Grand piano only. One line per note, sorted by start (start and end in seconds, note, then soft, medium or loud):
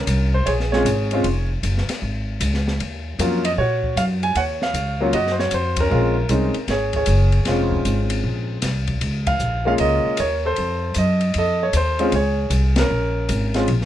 0.00 0.31 C#4 medium
0.00 0.36 A#4 medium
0.34 0.48 C5 medium
0.46 0.73 G#4 medium
0.46 0.52 C#5 medium
0.72 0.85 G#3 medium
0.72 0.85 C4 medium
0.72 0.86 C#4 medium
0.72 0.86 F4 medium
0.72 1.47 G#4 medium
0.72 1.46 C#5 medium
1.12 1.24 G#3 medium
1.12 1.24 C4 medium
1.12 1.24 C#4 medium
1.12 1.25 F4 medium
3.20 3.43 F#3 medium
3.20 3.43 A#3 medium
3.20 3.43 C#4 medium
3.20 3.43 F4 medium
3.45 3.50 D#5 medium
3.58 4.33 F#4 medium
3.58 3.98 C#5 medium
3.97 4.03 F5 medium
4.23 4.37 G#5 medium
4.37 5.10 C#5 medium
4.37 4.42 F#5 loud
4.63 4.98 F5 medium
5.01 5.13 F#3 medium
5.01 5.12 A#3 medium
5.01 5.13 C#4 medium
5.01 5.13 F4 medium
5.14 5.88 F#4 medium
5.14 5.31 D#5 medium
5.32 5.39 C5 medium
5.40 5.53 C#5 medium
5.54 5.80 C5 medium
5.80 5.90 C#4 medium
5.80 6.73 A#4 medium
5.90 6.14 G#3 medium
5.90 6.14 C4 soft
5.90 6.15 C#4 medium
5.90 6.15 F4 medium
6.29 6.53 G#3 medium
6.29 6.53 C4 medium
6.29 6.54 C#4 medium
6.29 6.54 D#4 medium
6.71 6.95 G#4 medium
6.71 6.95 C#5 medium
6.96 7.70 G#4 medium
6.96 7.69 C#5 medium
7.47 8.55 G#3 medium
7.47 8.55 C4 medium
7.47 8.56 C#4 medium
7.47 8.56 F4 medium
9.27 9.64 F5 medium
9.65 10.16 G#3 medium
9.65 10.15 A#3 medium
9.65 10.16 C#4 medium
9.65 10.16 F4 medium
9.65 9.73 F5 medium
9.80 10.53 A#4 medium
9.80 10.20 D#5 medium
10.20 10.43 C#5 medium
10.45 11.18 A4 medium
10.45 10.99 C5 medium
10.98 11.37 D#5 medium
11.38 12.10 A4 medium
11.38 11.63 D#5 medium
11.63 11.74 C#5 medium
11.77 12.15 C5 medium
11.99 12.11 G#3 medium
11.99 12.11 C4 medium
11.99 12.12 C#4 medium
11.99 12.12 F4 medium
12.15 12.87 G#4 medium
12.15 12.50 C#5 medium
12.79 13.52 C#4 medium
12.79 13.52 A#4 medium
13.55 13.66 G#3 medium
13.55 13.67 C4 medium
13.55 13.67 C#4 medium
13.55 13.67 F4 medium